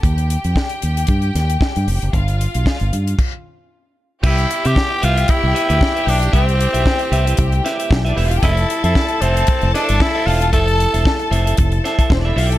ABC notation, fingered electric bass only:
X:1
M:4/4
L:1/16
Q:"Swing 16ths" 1/4=114
K:Gm
V:1 name="Fingered electric bass" clef=bass
E,,3 F,, z2 E,,2 G,,2 E,,2 z G,, F,,, _G,,, | G,,,3 =B,,, z G,,, G,,2 z8 | [K:C] C,,2 z C, z2 C,,2 z C,, z D,, z2 B,,,2 | C,,3 B,,, z2 C,,2 C,,2 z2 B,,,2 E,,,2 |
F,,,2 z F,, z2 F,,,2 z F,,, z G,,, z2 E,,,2 | F,,,3 E,,, z2 F,,,2 F,,,2 z2 E,,,2 B,,,2 |]